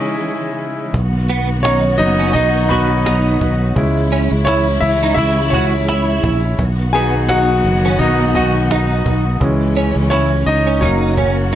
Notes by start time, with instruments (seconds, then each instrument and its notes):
Already playing: string section C#3 E3 G#3 C#4, grand piano G#3 C#4 D#4 E4 C#5 D#5 E5
0.94 fingered electric bass B1, string section D#3 F#3 B3 F#4, cajon bass
1.14 cajon slap
1.30 clean electric guitar B3, cajon slap
1.49 cajon slap
1.63 grand piano C#4 C#5, clean electric guitar D#4, cajon slap
1.98 fingered electric bass F#1, grand piano F#3 B3 D#4 D#5, cajon slap
2.19 clean electric guitar C#4, cajon slap
2.33 fingered electric bass B1, grand piano D#4 D#5, clean electric guitar D#4, cajon bass, cajon slap
2.55 cajon slap
2.69 grand piano B3 B4, clean electric guitar F#4, cajon bass
2.90 cajon slap
3.06 clean electric guitar D#4, cajon slap
3.26 cajon slap
3.41 fingered electric bass B1, cajon bass
3.61 cajon slap
3.75 fingered electric bass C#2, string section C#3 E3 G#3 E4, grand piano G#3 C#4 E4, cajon bass
3.96 cajon slap
4.12 clean electric guitar C#4, cajon slap
4.31 fingered electric bass C#2, cajon slap
4.45 grand piano C#4 C#5, clean electric guitar E4, cajon slap
4.67 cajon slap
4.80 fingered electric bass C#2, grand piano E4 E5, cajon slap
5.02 clean electric guitar D#4, cajon slap
5.14 fingered electric bass C#2, grand piano E4 E5, clean electric guitar E4, cajon bass, cajon slap
5.37 cajon slap
5.50 grand piano C#4 C#5, clean electric guitar F#4, cajon bass
5.73 cajon slap
5.88 clean electric guitar E4, cajon slap
6.08 cajon slap
6.24 fingered electric bass A#1, cajon bass
6.43 cajon slap
6.59 fingered electric bass B1, string section D#3 F#3 B3 F#4, cajon bass
6.78 cajon slap
6.93 grand piano F#3 B3 D#4 G#4 G#5, clean electric guitar B3, cajon slap
7.14 cajon slap
7.29 clean electric guitar D#4, grand piano F#4 F#5, cajon slap
7.49 cajon slap
7.64 fingered electric bass F#1, cajon slap
7.84 clean electric guitar C#4, cajon slap
7.99 fingered electric bass B1, grand piano F#3 B3 D#4 D#5, clean electric guitar D#4, cajon bass, cajon slap
8.20 cajon slap
8.35 grand piano D#4 D#5, clean electric guitar F#4, cajon bass
8.55 cajon slap
8.71 clean electric guitar D#4, cajon slap
8.90 cajon slap
9.06 fingered electric bass B1, cajon bass
9.26 cajon slap
9.40 fingered electric bass C#2, string section C#3 E3 G#3 C#4, grand piano E3 G#3 C#4, cajon bass
9.77 clean electric guitar C#4, cajon slap
9.96 fingered electric bass C#2, cajon slap
10.10 grand piano C#4 C#5, clean electric guitar E4, cajon slap
10.32 cajon slap
10.46 fingered electric bass C#2, grand piano D#4 D#5, cajon slap
10.67 clean electric guitar C#4, cajon slap
10.81 fingered electric bass F#1, string section C#3 F#3 A#3 F#4, grand piano F#3 A#3 C#4 C#5, clean electric guitar D#4, cajon bass, cajon slap
11.02 cajon slap
11.17 clean electric guitar C#4, cajon bass
11.37 cajon slap